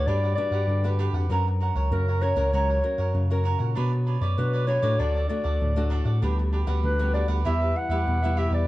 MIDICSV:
0, 0, Header, 1, 6, 480
1, 0, Start_track
1, 0, Tempo, 614880
1, 1018, Time_signature, 4, 2, 24, 8
1, 6772, End_track
2, 0, Start_track
2, 0, Title_t, "Clarinet"
2, 0, Program_c, 0, 71
2, 49, Note_on_c, 0, 74, 96
2, 270, Note_off_c, 0, 74, 0
2, 275, Note_on_c, 0, 74, 101
2, 735, Note_off_c, 0, 74, 0
2, 1501, Note_on_c, 0, 70, 91
2, 1736, Note_on_c, 0, 73, 106
2, 1748, Note_off_c, 0, 70, 0
2, 1977, Note_off_c, 0, 73, 0
2, 1981, Note_on_c, 0, 73, 88
2, 2428, Note_off_c, 0, 73, 0
2, 3409, Note_on_c, 0, 71, 71
2, 3636, Note_off_c, 0, 71, 0
2, 3646, Note_on_c, 0, 73, 98
2, 3896, Note_on_c, 0, 74, 104
2, 3907, Note_off_c, 0, 73, 0
2, 4125, Note_off_c, 0, 74, 0
2, 4130, Note_on_c, 0, 74, 88
2, 4583, Note_off_c, 0, 74, 0
2, 5344, Note_on_c, 0, 71, 81
2, 5564, Note_off_c, 0, 71, 0
2, 5572, Note_on_c, 0, 74, 88
2, 5682, Note_off_c, 0, 74, 0
2, 5826, Note_on_c, 0, 76, 91
2, 6064, Note_on_c, 0, 78, 107
2, 6076, Note_off_c, 0, 76, 0
2, 6545, Note_on_c, 0, 76, 90
2, 6557, Note_off_c, 0, 78, 0
2, 6662, Note_off_c, 0, 76, 0
2, 6665, Note_on_c, 0, 74, 85
2, 6772, Note_off_c, 0, 74, 0
2, 6772, End_track
3, 0, Start_track
3, 0, Title_t, "Cavaquinho"
3, 0, Program_c, 1, 24
3, 59, Note_on_c, 1, 62, 69
3, 61, Note_on_c, 1, 67, 66
3, 67, Note_on_c, 1, 71, 72
3, 70, Note_on_c, 1, 78, 77
3, 169, Note_off_c, 1, 62, 0
3, 170, Note_off_c, 1, 67, 0
3, 173, Note_off_c, 1, 71, 0
3, 173, Note_off_c, 1, 78, 0
3, 182, Note_on_c, 1, 78, 46
3, 193, Note_on_c, 1, 71, 46
3, 200, Note_on_c, 1, 67, 40
3, 290, Note_off_c, 1, 67, 0
3, 291, Note_off_c, 1, 71, 0
3, 291, Note_off_c, 1, 78, 0
3, 406, Note_on_c, 1, 78, 58
3, 416, Note_on_c, 1, 71, 53
3, 420, Note_on_c, 1, 67, 59
3, 642, Note_off_c, 1, 78, 0
3, 647, Note_off_c, 1, 71, 0
3, 649, Note_off_c, 1, 67, 0
3, 660, Note_on_c, 1, 78, 51
3, 671, Note_on_c, 1, 71, 45
3, 678, Note_on_c, 1, 67, 44
3, 766, Note_off_c, 1, 67, 0
3, 769, Note_off_c, 1, 78, 0
3, 771, Note_on_c, 1, 62, 74
3, 772, Note_off_c, 1, 71, 0
3, 775, Note_on_c, 1, 67, 77
3, 781, Note_on_c, 1, 71, 72
3, 785, Note_on_c, 1, 78, 75
3, 880, Note_off_c, 1, 78, 0
3, 885, Note_off_c, 1, 62, 0
3, 887, Note_off_c, 1, 67, 0
3, 888, Note_off_c, 1, 71, 0
3, 890, Note_on_c, 1, 78, 54
3, 897, Note_on_c, 1, 71, 44
3, 905, Note_on_c, 1, 67, 38
3, 1004, Note_off_c, 1, 78, 0
3, 1008, Note_off_c, 1, 71, 0
3, 1012, Note_off_c, 1, 67, 0
3, 1019, Note_on_c, 1, 66, 59
3, 1027, Note_on_c, 1, 70, 73
3, 1031, Note_on_c, 1, 73, 72
3, 1034, Note_on_c, 1, 78, 74
3, 1129, Note_off_c, 1, 66, 0
3, 1133, Note_off_c, 1, 70, 0
3, 1135, Note_off_c, 1, 73, 0
3, 1136, Note_off_c, 1, 78, 0
3, 1252, Note_on_c, 1, 66, 45
3, 1257, Note_on_c, 1, 70, 49
3, 1261, Note_on_c, 1, 73, 43
3, 1268, Note_on_c, 1, 78, 50
3, 1361, Note_off_c, 1, 78, 0
3, 1366, Note_off_c, 1, 66, 0
3, 1368, Note_off_c, 1, 70, 0
3, 1368, Note_off_c, 1, 73, 0
3, 1370, Note_on_c, 1, 78, 56
3, 1377, Note_on_c, 1, 73, 66
3, 1383, Note_on_c, 1, 70, 50
3, 1605, Note_off_c, 1, 78, 0
3, 1608, Note_off_c, 1, 73, 0
3, 1611, Note_off_c, 1, 70, 0
3, 1626, Note_on_c, 1, 78, 46
3, 1632, Note_on_c, 1, 73, 43
3, 1642, Note_on_c, 1, 70, 41
3, 1729, Note_off_c, 1, 70, 0
3, 1732, Note_off_c, 1, 78, 0
3, 1733, Note_off_c, 1, 73, 0
3, 1733, Note_on_c, 1, 66, 54
3, 1738, Note_on_c, 1, 70, 46
3, 1743, Note_on_c, 1, 73, 55
3, 1749, Note_on_c, 1, 78, 52
3, 1838, Note_off_c, 1, 78, 0
3, 1846, Note_off_c, 1, 66, 0
3, 1847, Note_off_c, 1, 73, 0
3, 1848, Note_on_c, 1, 78, 68
3, 1849, Note_off_c, 1, 70, 0
3, 1857, Note_on_c, 1, 73, 60
3, 1865, Note_on_c, 1, 70, 61
3, 1963, Note_off_c, 1, 78, 0
3, 1968, Note_off_c, 1, 73, 0
3, 1972, Note_off_c, 1, 70, 0
3, 1978, Note_on_c, 1, 66, 76
3, 1983, Note_on_c, 1, 70, 71
3, 1987, Note_on_c, 1, 73, 77
3, 1990, Note_on_c, 1, 78, 67
3, 2088, Note_off_c, 1, 66, 0
3, 2091, Note_off_c, 1, 70, 0
3, 2093, Note_off_c, 1, 73, 0
3, 2094, Note_off_c, 1, 78, 0
3, 2103, Note_on_c, 1, 78, 45
3, 2110, Note_on_c, 1, 73, 42
3, 2118, Note_on_c, 1, 70, 39
3, 2205, Note_off_c, 1, 70, 0
3, 2206, Note_off_c, 1, 73, 0
3, 2211, Note_off_c, 1, 78, 0
3, 2327, Note_on_c, 1, 78, 65
3, 2334, Note_on_c, 1, 73, 58
3, 2341, Note_on_c, 1, 70, 56
3, 2563, Note_off_c, 1, 78, 0
3, 2567, Note_off_c, 1, 73, 0
3, 2570, Note_off_c, 1, 70, 0
3, 2579, Note_on_c, 1, 78, 48
3, 2586, Note_on_c, 1, 73, 46
3, 2593, Note_on_c, 1, 70, 42
3, 2682, Note_off_c, 1, 70, 0
3, 2682, Note_on_c, 1, 66, 63
3, 2687, Note_off_c, 1, 73, 0
3, 2689, Note_off_c, 1, 78, 0
3, 2692, Note_on_c, 1, 70, 63
3, 2696, Note_on_c, 1, 73, 69
3, 2701, Note_on_c, 1, 78, 78
3, 2792, Note_off_c, 1, 78, 0
3, 2800, Note_off_c, 1, 73, 0
3, 2801, Note_off_c, 1, 66, 0
3, 2801, Note_on_c, 1, 78, 48
3, 2805, Note_off_c, 1, 70, 0
3, 2809, Note_on_c, 1, 73, 44
3, 2815, Note_on_c, 1, 70, 42
3, 2920, Note_off_c, 1, 78, 0
3, 2924, Note_off_c, 1, 73, 0
3, 2927, Note_off_c, 1, 70, 0
3, 2930, Note_on_c, 1, 62, 64
3, 2940, Note_on_c, 1, 71, 68
3, 2943, Note_on_c, 1, 73, 60
3, 2948, Note_on_c, 1, 74, 77
3, 3044, Note_off_c, 1, 62, 0
3, 3049, Note_off_c, 1, 71, 0
3, 3051, Note_off_c, 1, 73, 0
3, 3054, Note_off_c, 1, 74, 0
3, 3170, Note_on_c, 1, 62, 43
3, 3176, Note_on_c, 1, 71, 45
3, 3180, Note_on_c, 1, 73, 49
3, 3184, Note_on_c, 1, 74, 52
3, 3281, Note_off_c, 1, 74, 0
3, 3285, Note_off_c, 1, 62, 0
3, 3288, Note_off_c, 1, 71, 0
3, 3289, Note_off_c, 1, 73, 0
3, 3290, Note_on_c, 1, 74, 65
3, 3297, Note_on_c, 1, 73, 55
3, 3304, Note_on_c, 1, 71, 58
3, 3525, Note_off_c, 1, 74, 0
3, 3528, Note_off_c, 1, 73, 0
3, 3531, Note_off_c, 1, 71, 0
3, 3539, Note_on_c, 1, 74, 48
3, 3547, Note_on_c, 1, 73, 49
3, 3554, Note_on_c, 1, 71, 38
3, 3648, Note_off_c, 1, 71, 0
3, 3649, Note_off_c, 1, 74, 0
3, 3653, Note_off_c, 1, 73, 0
3, 3654, Note_on_c, 1, 62, 50
3, 3657, Note_on_c, 1, 71, 49
3, 3665, Note_on_c, 1, 73, 55
3, 3667, Note_on_c, 1, 74, 53
3, 3756, Note_off_c, 1, 74, 0
3, 3761, Note_off_c, 1, 73, 0
3, 3765, Note_on_c, 1, 74, 76
3, 3766, Note_off_c, 1, 62, 0
3, 3768, Note_off_c, 1, 71, 0
3, 3770, Note_on_c, 1, 73, 69
3, 3780, Note_on_c, 1, 71, 57
3, 3882, Note_off_c, 1, 74, 0
3, 3884, Note_off_c, 1, 73, 0
3, 3890, Note_off_c, 1, 71, 0
3, 3897, Note_on_c, 1, 62, 69
3, 3900, Note_on_c, 1, 69, 73
3, 3910, Note_on_c, 1, 74, 73
3, 3910, Note_on_c, 1, 78, 72
3, 4008, Note_off_c, 1, 62, 0
3, 4010, Note_off_c, 1, 69, 0
3, 4014, Note_off_c, 1, 74, 0
3, 4014, Note_off_c, 1, 78, 0
3, 4022, Note_on_c, 1, 78, 47
3, 4029, Note_on_c, 1, 74, 43
3, 4037, Note_on_c, 1, 69, 43
3, 4125, Note_off_c, 1, 69, 0
3, 4128, Note_off_c, 1, 74, 0
3, 4131, Note_off_c, 1, 78, 0
3, 4244, Note_on_c, 1, 78, 64
3, 4249, Note_on_c, 1, 74, 59
3, 4258, Note_on_c, 1, 69, 50
3, 4481, Note_off_c, 1, 78, 0
3, 4484, Note_off_c, 1, 74, 0
3, 4489, Note_off_c, 1, 69, 0
3, 4502, Note_on_c, 1, 78, 47
3, 4509, Note_on_c, 1, 74, 48
3, 4516, Note_on_c, 1, 69, 37
3, 4605, Note_off_c, 1, 69, 0
3, 4606, Note_on_c, 1, 62, 74
3, 4607, Note_off_c, 1, 74, 0
3, 4611, Note_off_c, 1, 78, 0
3, 4614, Note_on_c, 1, 69, 69
3, 4617, Note_on_c, 1, 74, 78
3, 4619, Note_on_c, 1, 78, 79
3, 4716, Note_off_c, 1, 78, 0
3, 4722, Note_off_c, 1, 62, 0
3, 4724, Note_off_c, 1, 74, 0
3, 4725, Note_on_c, 1, 78, 51
3, 4726, Note_off_c, 1, 69, 0
3, 4733, Note_on_c, 1, 74, 45
3, 4737, Note_on_c, 1, 69, 37
3, 4842, Note_off_c, 1, 78, 0
3, 4846, Note_off_c, 1, 74, 0
3, 4848, Note_off_c, 1, 69, 0
3, 4857, Note_on_c, 1, 62, 67
3, 4863, Note_on_c, 1, 67, 64
3, 4865, Note_on_c, 1, 71, 68
3, 4871, Note_on_c, 1, 78, 77
3, 4968, Note_off_c, 1, 62, 0
3, 4971, Note_off_c, 1, 67, 0
3, 4972, Note_off_c, 1, 71, 0
3, 4975, Note_off_c, 1, 78, 0
3, 5094, Note_on_c, 1, 62, 48
3, 5100, Note_on_c, 1, 67, 50
3, 5103, Note_on_c, 1, 71, 53
3, 5107, Note_on_c, 1, 78, 51
3, 5198, Note_off_c, 1, 78, 0
3, 5201, Note_off_c, 1, 71, 0
3, 5206, Note_off_c, 1, 62, 0
3, 5207, Note_on_c, 1, 78, 69
3, 5210, Note_off_c, 1, 67, 0
3, 5210, Note_on_c, 1, 71, 63
3, 5220, Note_on_c, 1, 67, 57
3, 5443, Note_off_c, 1, 78, 0
3, 5445, Note_off_c, 1, 71, 0
3, 5450, Note_off_c, 1, 67, 0
3, 5457, Note_on_c, 1, 78, 42
3, 5467, Note_on_c, 1, 71, 38
3, 5471, Note_on_c, 1, 67, 43
3, 5568, Note_off_c, 1, 78, 0
3, 5569, Note_off_c, 1, 67, 0
3, 5573, Note_off_c, 1, 71, 0
3, 5575, Note_on_c, 1, 62, 49
3, 5578, Note_on_c, 1, 67, 47
3, 5583, Note_on_c, 1, 71, 49
3, 5586, Note_on_c, 1, 78, 54
3, 5676, Note_off_c, 1, 78, 0
3, 5685, Note_on_c, 1, 78, 79
3, 5686, Note_off_c, 1, 71, 0
3, 5687, Note_off_c, 1, 62, 0
3, 5689, Note_off_c, 1, 67, 0
3, 5695, Note_on_c, 1, 71, 65
3, 5703, Note_on_c, 1, 67, 52
3, 5802, Note_off_c, 1, 78, 0
3, 5807, Note_off_c, 1, 71, 0
3, 5808, Note_off_c, 1, 67, 0
3, 5813, Note_on_c, 1, 64, 68
3, 5817, Note_on_c, 1, 67, 84
3, 5823, Note_on_c, 1, 71, 66
3, 5828, Note_on_c, 1, 76, 76
3, 5926, Note_off_c, 1, 64, 0
3, 5928, Note_off_c, 1, 67, 0
3, 5931, Note_off_c, 1, 71, 0
3, 5934, Note_off_c, 1, 76, 0
3, 5944, Note_on_c, 1, 76, 49
3, 5949, Note_on_c, 1, 71, 46
3, 5958, Note_on_c, 1, 67, 40
3, 6049, Note_off_c, 1, 67, 0
3, 6049, Note_off_c, 1, 71, 0
3, 6052, Note_off_c, 1, 76, 0
3, 6165, Note_on_c, 1, 76, 58
3, 6174, Note_on_c, 1, 71, 62
3, 6179, Note_on_c, 1, 67, 57
3, 6402, Note_off_c, 1, 76, 0
3, 6407, Note_off_c, 1, 71, 0
3, 6409, Note_off_c, 1, 67, 0
3, 6420, Note_on_c, 1, 76, 52
3, 6429, Note_on_c, 1, 71, 47
3, 6433, Note_on_c, 1, 67, 39
3, 6525, Note_off_c, 1, 67, 0
3, 6530, Note_off_c, 1, 76, 0
3, 6532, Note_off_c, 1, 71, 0
3, 6532, Note_on_c, 1, 64, 64
3, 6534, Note_on_c, 1, 67, 82
3, 6542, Note_on_c, 1, 71, 64
3, 6542, Note_on_c, 1, 76, 68
3, 6634, Note_off_c, 1, 76, 0
3, 6643, Note_on_c, 1, 76, 48
3, 6644, Note_off_c, 1, 71, 0
3, 6646, Note_off_c, 1, 64, 0
3, 6647, Note_off_c, 1, 67, 0
3, 6654, Note_on_c, 1, 71, 46
3, 6660, Note_on_c, 1, 67, 36
3, 6762, Note_off_c, 1, 76, 0
3, 6767, Note_off_c, 1, 71, 0
3, 6770, Note_off_c, 1, 67, 0
3, 6772, End_track
4, 0, Start_track
4, 0, Title_t, "Nylon-string guitar"
4, 0, Program_c, 2, 24
4, 0, Note_on_c, 2, 62, 66
4, 0, Note_on_c, 2, 66, 64
4, 0, Note_on_c, 2, 71, 70
4, 59, Note_on_c, 2, 55, 53
4, 255, Note_off_c, 2, 62, 0
4, 258, Note_off_c, 2, 66, 0
4, 259, Note_off_c, 2, 71, 0
4, 291, Note_on_c, 2, 62, 61
4, 297, Note_on_c, 2, 66, 62
4, 298, Note_on_c, 2, 71, 69
4, 515, Note_off_c, 2, 55, 0
4, 538, Note_on_c, 2, 50, 54
4, 617, Note_off_c, 2, 62, 0
4, 617, Note_off_c, 2, 66, 0
4, 619, Note_off_c, 2, 71, 0
4, 656, Note_on_c, 2, 62, 64
4, 659, Note_on_c, 2, 66, 59
4, 663, Note_on_c, 2, 71, 65
4, 979, Note_off_c, 2, 62, 0
4, 980, Note_off_c, 2, 66, 0
4, 980, Note_off_c, 2, 71, 0
4, 994, Note_off_c, 2, 50, 0
4, 1010, Note_on_c, 2, 54, 52
4, 1013, Note_on_c, 2, 61, 58
4, 1017, Note_on_c, 2, 66, 49
4, 1022, Note_on_c, 2, 70, 57
4, 1457, Note_off_c, 2, 61, 0
4, 1459, Note_off_c, 2, 66, 0
4, 1462, Note_off_c, 2, 70, 0
4, 1470, Note_off_c, 2, 54, 0
4, 1494, Note_on_c, 2, 49, 49
4, 1497, Note_on_c, 2, 61, 58
4, 1497, Note_on_c, 2, 66, 58
4, 1504, Note_on_c, 2, 70, 59
4, 1638, Note_off_c, 2, 61, 0
4, 1639, Note_off_c, 2, 66, 0
4, 1642, Note_off_c, 2, 70, 0
4, 1727, Note_on_c, 2, 61, 60
4, 1732, Note_on_c, 2, 66, 55
4, 1737, Note_on_c, 2, 70, 61
4, 1805, Note_off_c, 2, 61, 0
4, 1807, Note_off_c, 2, 66, 0
4, 1810, Note_off_c, 2, 70, 0
4, 1843, Note_on_c, 2, 61, 68
4, 1849, Note_on_c, 2, 66, 69
4, 1849, Note_on_c, 2, 70, 70
4, 1952, Note_off_c, 2, 49, 0
4, 1978, Note_on_c, 2, 54, 55
4, 2172, Note_off_c, 2, 61, 0
4, 2174, Note_off_c, 2, 70, 0
4, 2175, Note_off_c, 2, 66, 0
4, 2213, Note_on_c, 2, 61, 57
4, 2215, Note_on_c, 2, 66, 59
4, 2216, Note_on_c, 2, 70, 67
4, 2434, Note_off_c, 2, 54, 0
4, 2456, Note_on_c, 2, 49, 53
4, 2537, Note_off_c, 2, 61, 0
4, 2537, Note_off_c, 2, 66, 0
4, 2539, Note_off_c, 2, 70, 0
4, 2580, Note_on_c, 2, 61, 56
4, 2584, Note_on_c, 2, 66, 62
4, 2589, Note_on_c, 2, 70, 67
4, 2901, Note_off_c, 2, 61, 0
4, 2903, Note_off_c, 2, 66, 0
4, 2904, Note_off_c, 2, 70, 0
4, 2913, Note_off_c, 2, 49, 0
4, 2934, Note_on_c, 2, 59, 54
4, 2937, Note_on_c, 2, 62, 59
4, 2939, Note_on_c, 2, 66, 57
4, 2942, Note_on_c, 2, 73, 58
4, 3246, Note_off_c, 2, 62, 0
4, 3247, Note_off_c, 2, 66, 0
4, 3249, Note_off_c, 2, 73, 0
4, 3393, Note_off_c, 2, 59, 0
4, 3417, Note_on_c, 2, 54, 53
4, 3419, Note_on_c, 2, 62, 55
4, 3423, Note_on_c, 2, 66, 57
4, 3427, Note_on_c, 2, 73, 68
4, 3619, Note_off_c, 2, 62, 0
4, 3622, Note_off_c, 2, 66, 0
4, 3623, Note_off_c, 2, 73, 0
4, 3646, Note_on_c, 2, 62, 55
4, 3651, Note_on_c, 2, 66, 58
4, 3657, Note_on_c, 2, 73, 60
4, 3724, Note_off_c, 2, 62, 0
4, 3726, Note_off_c, 2, 66, 0
4, 3730, Note_off_c, 2, 73, 0
4, 3770, Note_on_c, 2, 57, 69
4, 3770, Note_on_c, 2, 62, 62
4, 3773, Note_on_c, 2, 66, 74
4, 3874, Note_off_c, 2, 54, 0
4, 3900, Note_on_c, 2, 50, 58
4, 4095, Note_off_c, 2, 62, 0
4, 4096, Note_off_c, 2, 57, 0
4, 4097, Note_off_c, 2, 66, 0
4, 4133, Note_on_c, 2, 57, 59
4, 4138, Note_on_c, 2, 62, 61
4, 4141, Note_on_c, 2, 66, 70
4, 4355, Note_off_c, 2, 50, 0
4, 4378, Note_on_c, 2, 45, 53
4, 4457, Note_off_c, 2, 57, 0
4, 4460, Note_off_c, 2, 62, 0
4, 4461, Note_off_c, 2, 66, 0
4, 4497, Note_on_c, 2, 57, 73
4, 4501, Note_on_c, 2, 62, 66
4, 4506, Note_on_c, 2, 66, 82
4, 4819, Note_off_c, 2, 57, 0
4, 4822, Note_off_c, 2, 62, 0
4, 4823, Note_off_c, 2, 66, 0
4, 4834, Note_off_c, 2, 45, 0
4, 4856, Note_on_c, 2, 50, 52
4, 4859, Note_on_c, 2, 59, 61
4, 4860, Note_on_c, 2, 55, 59
4, 4865, Note_on_c, 2, 66, 53
4, 5180, Note_off_c, 2, 55, 0
4, 5181, Note_off_c, 2, 59, 0
4, 5182, Note_off_c, 2, 66, 0
4, 5206, Note_on_c, 2, 55, 64
4, 5209, Note_on_c, 2, 59, 63
4, 5210, Note_on_c, 2, 66, 68
4, 5314, Note_off_c, 2, 50, 0
4, 5335, Note_on_c, 2, 50, 58
4, 5414, Note_off_c, 2, 55, 0
4, 5415, Note_off_c, 2, 66, 0
4, 5416, Note_off_c, 2, 59, 0
4, 5459, Note_on_c, 2, 55, 70
4, 5463, Note_on_c, 2, 59, 56
4, 5468, Note_on_c, 2, 66, 60
4, 5781, Note_off_c, 2, 55, 0
4, 5782, Note_off_c, 2, 59, 0
4, 5785, Note_off_c, 2, 66, 0
4, 5793, Note_off_c, 2, 50, 0
4, 5817, Note_on_c, 2, 55, 59
4, 5820, Note_on_c, 2, 52, 62
4, 5826, Note_on_c, 2, 59, 53
4, 5827, Note_on_c, 2, 64, 68
4, 6140, Note_off_c, 2, 55, 0
4, 6143, Note_off_c, 2, 59, 0
4, 6145, Note_off_c, 2, 64, 0
4, 6176, Note_on_c, 2, 55, 67
4, 6179, Note_on_c, 2, 59, 60
4, 6180, Note_on_c, 2, 64, 76
4, 6276, Note_off_c, 2, 52, 0
4, 6302, Note_on_c, 2, 47, 53
4, 6379, Note_off_c, 2, 55, 0
4, 6381, Note_off_c, 2, 59, 0
4, 6381, Note_off_c, 2, 64, 0
4, 6432, Note_on_c, 2, 55, 66
4, 6437, Note_on_c, 2, 59, 67
4, 6442, Note_on_c, 2, 64, 75
4, 6747, Note_off_c, 2, 55, 0
4, 6750, Note_off_c, 2, 59, 0
4, 6751, Note_off_c, 2, 64, 0
4, 6757, Note_off_c, 2, 47, 0
4, 6772, End_track
5, 0, Start_track
5, 0, Title_t, "Tine electric piano"
5, 0, Program_c, 3, 4
5, 55, Note_on_c, 3, 43, 96
5, 261, Note_off_c, 3, 43, 0
5, 399, Note_on_c, 3, 43, 65
5, 509, Note_off_c, 3, 43, 0
5, 530, Note_on_c, 3, 43, 76
5, 839, Note_off_c, 3, 43, 0
5, 884, Note_on_c, 3, 41, 77
5, 992, Note_off_c, 3, 41, 0
5, 1013, Note_on_c, 3, 42, 91
5, 1321, Note_off_c, 3, 42, 0
5, 1369, Note_on_c, 3, 37, 82
5, 1475, Note_off_c, 3, 37, 0
5, 1496, Note_on_c, 3, 42, 94
5, 1803, Note_off_c, 3, 42, 0
5, 1845, Note_on_c, 3, 37, 77
5, 1953, Note_off_c, 3, 37, 0
5, 1975, Note_on_c, 3, 37, 91
5, 2180, Note_off_c, 3, 37, 0
5, 2327, Note_on_c, 3, 42, 64
5, 2434, Note_off_c, 3, 42, 0
5, 2458, Note_on_c, 3, 42, 90
5, 2764, Note_off_c, 3, 42, 0
5, 2811, Note_on_c, 3, 46, 72
5, 2916, Note_off_c, 3, 46, 0
5, 2949, Note_on_c, 3, 47, 89
5, 3250, Note_off_c, 3, 47, 0
5, 3291, Note_on_c, 3, 42, 79
5, 3396, Note_off_c, 3, 42, 0
5, 3422, Note_on_c, 3, 47, 79
5, 3726, Note_off_c, 3, 47, 0
5, 3768, Note_on_c, 3, 45, 79
5, 3874, Note_off_c, 3, 45, 0
5, 3900, Note_on_c, 3, 38, 81
5, 4103, Note_off_c, 3, 38, 0
5, 4246, Note_on_c, 3, 38, 75
5, 4353, Note_off_c, 3, 38, 0
5, 4375, Note_on_c, 3, 38, 84
5, 4682, Note_off_c, 3, 38, 0
5, 4725, Note_on_c, 3, 45, 80
5, 4832, Note_off_c, 3, 45, 0
5, 4856, Note_on_c, 3, 38, 98
5, 5163, Note_off_c, 3, 38, 0
5, 5205, Note_on_c, 3, 38, 73
5, 5313, Note_off_c, 3, 38, 0
5, 5335, Note_on_c, 3, 38, 91
5, 5642, Note_off_c, 3, 38, 0
5, 5683, Note_on_c, 3, 38, 78
5, 5791, Note_off_c, 3, 38, 0
5, 5821, Note_on_c, 3, 40, 100
5, 6024, Note_off_c, 3, 40, 0
5, 6165, Note_on_c, 3, 40, 67
5, 6273, Note_off_c, 3, 40, 0
5, 6300, Note_on_c, 3, 40, 82
5, 6605, Note_off_c, 3, 40, 0
5, 6647, Note_on_c, 3, 40, 85
5, 6754, Note_off_c, 3, 40, 0
5, 6772, End_track
6, 0, Start_track
6, 0, Title_t, "Muted cavaquinho strokes"
6, 297, Note_on_c, 9, 29, 34
6, 375, Note_off_c, 9, 29, 0
6, 1148, Note_on_c, 9, 29, 37
6, 1226, Note_off_c, 9, 29, 0
6, 2211, Note_on_c, 9, 29, 37
6, 2289, Note_off_c, 9, 29, 0
6, 3059, Note_on_c, 9, 29, 32
6, 3137, Note_off_c, 9, 29, 0
6, 4130, Note_on_c, 9, 29, 40
6, 4208, Note_off_c, 9, 29, 0
6, 4988, Note_on_c, 9, 29, 38
6, 5066, Note_off_c, 9, 29, 0
6, 6056, Note_on_c, 9, 29, 36
6, 6134, Note_off_c, 9, 29, 0
6, 6772, End_track
0, 0, End_of_file